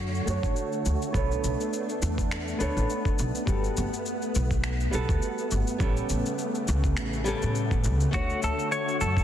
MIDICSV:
0, 0, Header, 1, 6, 480
1, 0, Start_track
1, 0, Key_signature, 2, "major"
1, 0, Tempo, 582524
1, 943, Time_signature, 4, 2, 24, 8
1, 7611, End_track
2, 0, Start_track
2, 0, Title_t, "Clean electric guitar"
2, 0, Program_c, 0, 27
2, 6710, Note_on_c, 0, 66, 91
2, 6930, Note_off_c, 0, 66, 0
2, 6955, Note_on_c, 0, 69, 94
2, 7182, Note_off_c, 0, 69, 0
2, 7185, Note_on_c, 0, 73, 103
2, 7421, Note_off_c, 0, 73, 0
2, 7424, Note_on_c, 0, 69, 91
2, 7611, Note_off_c, 0, 69, 0
2, 7611, End_track
3, 0, Start_track
3, 0, Title_t, "Nylon-string guitar"
3, 0, Program_c, 1, 24
3, 0, Note_on_c, 1, 57, 74
3, 0, Note_on_c, 1, 62, 63
3, 0, Note_on_c, 1, 66, 68
3, 0, Note_on_c, 1, 73, 80
3, 188, Note_off_c, 1, 57, 0
3, 194, Note_off_c, 1, 62, 0
3, 199, Note_off_c, 1, 66, 0
3, 205, Note_off_c, 1, 73, 0
3, 211, Note_on_c, 1, 57, 96
3, 222, Note_on_c, 1, 62, 84
3, 233, Note_on_c, 1, 66, 88
3, 243, Note_on_c, 1, 73, 104
3, 912, Note_off_c, 1, 57, 0
3, 917, Note_off_c, 1, 62, 0
3, 923, Note_off_c, 1, 66, 0
3, 927, Note_off_c, 1, 73, 0
3, 927, Note_on_c, 1, 59, 69
3, 940, Note_on_c, 1, 62, 65
3, 950, Note_on_c, 1, 69, 65
3, 962, Note_on_c, 1, 73, 75
3, 2110, Note_off_c, 1, 59, 0
3, 2116, Note_off_c, 1, 62, 0
3, 2121, Note_off_c, 1, 69, 0
3, 2127, Note_off_c, 1, 73, 0
3, 2129, Note_on_c, 1, 59, 98
3, 2140, Note_on_c, 1, 62, 89
3, 2149, Note_on_c, 1, 69, 94
3, 2160, Note_on_c, 1, 73, 111
3, 2830, Note_off_c, 1, 59, 0
3, 2836, Note_off_c, 1, 62, 0
3, 2840, Note_off_c, 1, 69, 0
3, 2846, Note_off_c, 1, 73, 0
3, 2848, Note_on_c, 1, 55, 73
3, 2861, Note_on_c, 1, 59, 66
3, 2871, Note_on_c, 1, 66, 62
3, 2881, Note_on_c, 1, 69, 74
3, 4030, Note_off_c, 1, 55, 0
3, 4037, Note_off_c, 1, 59, 0
3, 4042, Note_off_c, 1, 66, 0
3, 4046, Note_off_c, 1, 69, 0
3, 4046, Note_on_c, 1, 55, 94
3, 4056, Note_on_c, 1, 59, 91
3, 4067, Note_on_c, 1, 66, 86
3, 4077, Note_on_c, 1, 69, 108
3, 4749, Note_off_c, 1, 55, 0
3, 4754, Note_off_c, 1, 59, 0
3, 4760, Note_off_c, 1, 66, 0
3, 4765, Note_off_c, 1, 69, 0
3, 4765, Note_on_c, 1, 55, 72
3, 4775, Note_on_c, 1, 59, 67
3, 4786, Note_on_c, 1, 61, 66
3, 4799, Note_on_c, 1, 69, 80
3, 5949, Note_off_c, 1, 55, 0
3, 5953, Note_off_c, 1, 59, 0
3, 5959, Note_off_c, 1, 61, 0
3, 5965, Note_off_c, 1, 69, 0
3, 5967, Note_on_c, 1, 55, 96
3, 5978, Note_on_c, 1, 59, 83
3, 5986, Note_on_c, 1, 61, 89
3, 5999, Note_on_c, 1, 69, 109
3, 6669, Note_off_c, 1, 55, 0
3, 6675, Note_off_c, 1, 59, 0
3, 6679, Note_off_c, 1, 61, 0
3, 6682, Note_on_c, 1, 57, 73
3, 6685, Note_off_c, 1, 69, 0
3, 6694, Note_on_c, 1, 62, 65
3, 6704, Note_on_c, 1, 66, 61
3, 6716, Note_on_c, 1, 73, 82
3, 7611, Note_off_c, 1, 57, 0
3, 7611, Note_off_c, 1, 62, 0
3, 7611, Note_off_c, 1, 66, 0
3, 7611, Note_off_c, 1, 73, 0
3, 7611, End_track
4, 0, Start_track
4, 0, Title_t, "String machine"
4, 0, Program_c, 2, 50
4, 0, Note_on_c, 2, 50, 77
4, 0, Note_on_c, 2, 57, 69
4, 0, Note_on_c, 2, 66, 86
4, 0, Note_on_c, 2, 73, 75
4, 926, Note_off_c, 2, 50, 0
4, 926, Note_off_c, 2, 66, 0
4, 926, Note_off_c, 2, 73, 0
4, 948, Note_on_c, 2, 59, 68
4, 953, Note_on_c, 2, 62, 83
4, 2834, Note_off_c, 2, 57, 0
4, 2848, Note_off_c, 2, 62, 0
4, 2858, Note_on_c, 2, 57, 70
4, 4783, Note_on_c, 2, 49, 82
4, 6673, Note_off_c, 2, 59, 0
4, 6684, Note_off_c, 2, 49, 0
4, 6705, Note_on_c, 2, 50, 75
4, 6707, Note_on_c, 2, 73, 75
4, 6711, Note_on_c, 2, 66, 88
4, 7611, Note_off_c, 2, 50, 0
4, 7611, Note_off_c, 2, 57, 0
4, 7611, Note_off_c, 2, 66, 0
4, 7611, Note_off_c, 2, 73, 0
4, 7611, End_track
5, 0, Start_track
5, 0, Title_t, "Upright bass"
5, 0, Program_c, 3, 32
5, 0, Note_on_c, 3, 42, 94
5, 157, Note_off_c, 3, 42, 0
5, 225, Note_on_c, 3, 42, 79
5, 306, Note_off_c, 3, 42, 0
5, 356, Note_on_c, 3, 33, 88
5, 421, Note_off_c, 3, 33, 0
5, 708, Note_on_c, 3, 38, 87
5, 787, Note_off_c, 3, 38, 0
5, 942, Note_on_c, 3, 35, 92
5, 1099, Note_off_c, 3, 35, 0
5, 1187, Note_on_c, 3, 35, 80
5, 1266, Note_off_c, 3, 35, 0
5, 1667, Note_on_c, 3, 40, 92
5, 2079, Note_off_c, 3, 40, 0
5, 2148, Note_on_c, 3, 38, 78
5, 2227, Note_off_c, 3, 38, 0
5, 2279, Note_on_c, 3, 33, 87
5, 2342, Note_off_c, 3, 33, 0
5, 2629, Note_on_c, 3, 35, 89
5, 2708, Note_off_c, 3, 35, 0
5, 2863, Note_on_c, 3, 31, 86
5, 3020, Note_off_c, 3, 31, 0
5, 3112, Note_on_c, 3, 31, 84
5, 3189, Note_off_c, 3, 31, 0
5, 3591, Note_on_c, 3, 35, 93
5, 4001, Note_off_c, 3, 35, 0
5, 4069, Note_on_c, 3, 35, 79
5, 4148, Note_off_c, 3, 35, 0
5, 4194, Note_on_c, 3, 38, 89
5, 4260, Note_off_c, 3, 38, 0
5, 4547, Note_on_c, 3, 31, 90
5, 4626, Note_off_c, 3, 31, 0
5, 4781, Note_on_c, 3, 33, 92
5, 4939, Note_off_c, 3, 33, 0
5, 5027, Note_on_c, 3, 33, 77
5, 5107, Note_off_c, 3, 33, 0
5, 5507, Note_on_c, 3, 37, 94
5, 5750, Note_off_c, 3, 37, 0
5, 5750, Note_on_c, 3, 33, 81
5, 6036, Note_off_c, 3, 33, 0
5, 6125, Note_on_c, 3, 45, 83
5, 6470, Note_on_c, 3, 37, 97
5, 6482, Note_off_c, 3, 45, 0
5, 6623, Note_off_c, 3, 37, 0
5, 6701, Note_on_c, 3, 38, 94
5, 6859, Note_off_c, 3, 38, 0
5, 6948, Note_on_c, 3, 38, 80
5, 7027, Note_off_c, 3, 38, 0
5, 7427, Note_on_c, 3, 42, 89
5, 7611, Note_off_c, 3, 42, 0
5, 7611, End_track
6, 0, Start_track
6, 0, Title_t, "Drums"
6, 123, Note_on_c, 9, 69, 21
6, 205, Note_off_c, 9, 69, 0
6, 228, Note_on_c, 9, 69, 71
6, 310, Note_off_c, 9, 69, 0
6, 357, Note_on_c, 9, 36, 102
6, 361, Note_on_c, 9, 69, 29
6, 439, Note_off_c, 9, 36, 0
6, 443, Note_off_c, 9, 69, 0
6, 464, Note_on_c, 9, 69, 37
6, 546, Note_off_c, 9, 69, 0
6, 597, Note_on_c, 9, 69, 20
6, 679, Note_off_c, 9, 69, 0
6, 705, Note_on_c, 9, 69, 71
6, 787, Note_off_c, 9, 69, 0
6, 841, Note_on_c, 9, 69, 29
6, 923, Note_off_c, 9, 69, 0
6, 941, Note_on_c, 9, 36, 114
6, 947, Note_on_c, 9, 69, 43
6, 1024, Note_off_c, 9, 36, 0
6, 1029, Note_off_c, 9, 69, 0
6, 1084, Note_on_c, 9, 69, 22
6, 1166, Note_off_c, 9, 69, 0
6, 1187, Note_on_c, 9, 69, 73
6, 1270, Note_off_c, 9, 69, 0
6, 1322, Note_on_c, 9, 69, 34
6, 1405, Note_off_c, 9, 69, 0
6, 1428, Note_on_c, 9, 69, 43
6, 1510, Note_off_c, 9, 69, 0
6, 1560, Note_on_c, 9, 69, 20
6, 1642, Note_off_c, 9, 69, 0
6, 1667, Note_on_c, 9, 69, 81
6, 1749, Note_off_c, 9, 69, 0
6, 1797, Note_on_c, 9, 36, 97
6, 1803, Note_on_c, 9, 69, 36
6, 1879, Note_off_c, 9, 36, 0
6, 1885, Note_off_c, 9, 69, 0
6, 1907, Note_on_c, 9, 26, 77
6, 1909, Note_on_c, 9, 69, 41
6, 1989, Note_off_c, 9, 26, 0
6, 1992, Note_off_c, 9, 69, 0
6, 2043, Note_on_c, 9, 69, 21
6, 2125, Note_off_c, 9, 69, 0
6, 2147, Note_on_c, 9, 69, 76
6, 2229, Note_off_c, 9, 69, 0
6, 2284, Note_on_c, 9, 69, 32
6, 2366, Note_off_c, 9, 69, 0
6, 2388, Note_on_c, 9, 69, 42
6, 2470, Note_off_c, 9, 69, 0
6, 2516, Note_on_c, 9, 36, 107
6, 2521, Note_on_c, 9, 69, 20
6, 2598, Note_off_c, 9, 36, 0
6, 2604, Note_off_c, 9, 69, 0
6, 2626, Note_on_c, 9, 69, 73
6, 2708, Note_off_c, 9, 69, 0
6, 2761, Note_on_c, 9, 69, 35
6, 2844, Note_off_c, 9, 69, 0
6, 2860, Note_on_c, 9, 36, 119
6, 2866, Note_on_c, 9, 69, 43
6, 2943, Note_off_c, 9, 36, 0
6, 2948, Note_off_c, 9, 69, 0
6, 3001, Note_on_c, 9, 69, 23
6, 3083, Note_off_c, 9, 69, 0
6, 3106, Note_on_c, 9, 69, 73
6, 3189, Note_off_c, 9, 69, 0
6, 3243, Note_on_c, 9, 69, 35
6, 3325, Note_off_c, 9, 69, 0
6, 3343, Note_on_c, 9, 69, 42
6, 3426, Note_off_c, 9, 69, 0
6, 3477, Note_on_c, 9, 69, 21
6, 3560, Note_off_c, 9, 69, 0
6, 3584, Note_on_c, 9, 69, 73
6, 3666, Note_off_c, 9, 69, 0
6, 3714, Note_on_c, 9, 36, 106
6, 3717, Note_on_c, 9, 69, 35
6, 3796, Note_off_c, 9, 36, 0
6, 3800, Note_off_c, 9, 69, 0
6, 3820, Note_on_c, 9, 26, 75
6, 3822, Note_on_c, 9, 69, 45
6, 3902, Note_off_c, 9, 26, 0
6, 3905, Note_off_c, 9, 69, 0
6, 3957, Note_on_c, 9, 69, 22
6, 4040, Note_off_c, 9, 69, 0
6, 4064, Note_on_c, 9, 69, 78
6, 4147, Note_off_c, 9, 69, 0
6, 4194, Note_on_c, 9, 36, 114
6, 4199, Note_on_c, 9, 69, 32
6, 4276, Note_off_c, 9, 36, 0
6, 4282, Note_off_c, 9, 69, 0
6, 4303, Note_on_c, 9, 69, 40
6, 4385, Note_off_c, 9, 69, 0
6, 4435, Note_on_c, 9, 69, 21
6, 4518, Note_off_c, 9, 69, 0
6, 4541, Note_on_c, 9, 69, 75
6, 4623, Note_off_c, 9, 69, 0
6, 4675, Note_on_c, 9, 69, 33
6, 4758, Note_off_c, 9, 69, 0
6, 4779, Note_on_c, 9, 36, 119
6, 4783, Note_on_c, 9, 69, 43
6, 4862, Note_off_c, 9, 36, 0
6, 4866, Note_off_c, 9, 69, 0
6, 4917, Note_on_c, 9, 69, 22
6, 4999, Note_off_c, 9, 69, 0
6, 5021, Note_on_c, 9, 69, 74
6, 5104, Note_off_c, 9, 69, 0
6, 5156, Note_on_c, 9, 69, 34
6, 5238, Note_off_c, 9, 69, 0
6, 5262, Note_on_c, 9, 69, 46
6, 5345, Note_off_c, 9, 69, 0
6, 5396, Note_on_c, 9, 69, 20
6, 5478, Note_off_c, 9, 69, 0
6, 5503, Note_on_c, 9, 69, 80
6, 5585, Note_off_c, 9, 69, 0
6, 5634, Note_on_c, 9, 36, 98
6, 5638, Note_on_c, 9, 69, 33
6, 5717, Note_off_c, 9, 36, 0
6, 5720, Note_off_c, 9, 69, 0
6, 5740, Note_on_c, 9, 26, 75
6, 5742, Note_on_c, 9, 69, 41
6, 5822, Note_off_c, 9, 26, 0
6, 5824, Note_off_c, 9, 69, 0
6, 5876, Note_on_c, 9, 69, 20
6, 5959, Note_off_c, 9, 69, 0
6, 5980, Note_on_c, 9, 69, 75
6, 6063, Note_off_c, 9, 69, 0
6, 6114, Note_on_c, 9, 69, 31
6, 6197, Note_off_c, 9, 69, 0
6, 6224, Note_on_c, 9, 69, 39
6, 6306, Note_off_c, 9, 69, 0
6, 6354, Note_on_c, 9, 36, 97
6, 6359, Note_on_c, 9, 69, 19
6, 6437, Note_off_c, 9, 36, 0
6, 6441, Note_off_c, 9, 69, 0
6, 6460, Note_on_c, 9, 69, 77
6, 6543, Note_off_c, 9, 69, 0
6, 6594, Note_on_c, 9, 69, 33
6, 6677, Note_off_c, 9, 69, 0
6, 6700, Note_on_c, 9, 36, 110
6, 6702, Note_on_c, 9, 69, 41
6, 6783, Note_off_c, 9, 36, 0
6, 6785, Note_off_c, 9, 69, 0
6, 6837, Note_on_c, 9, 69, 20
6, 6919, Note_off_c, 9, 69, 0
6, 6943, Note_on_c, 9, 69, 69
6, 7025, Note_off_c, 9, 69, 0
6, 7080, Note_on_c, 9, 69, 33
6, 7163, Note_off_c, 9, 69, 0
6, 7184, Note_on_c, 9, 69, 42
6, 7267, Note_off_c, 9, 69, 0
6, 7322, Note_on_c, 9, 69, 22
6, 7404, Note_off_c, 9, 69, 0
6, 7424, Note_on_c, 9, 69, 74
6, 7506, Note_off_c, 9, 69, 0
6, 7553, Note_on_c, 9, 36, 98
6, 7563, Note_on_c, 9, 69, 35
6, 7611, Note_off_c, 9, 36, 0
6, 7611, Note_off_c, 9, 69, 0
6, 7611, End_track
0, 0, End_of_file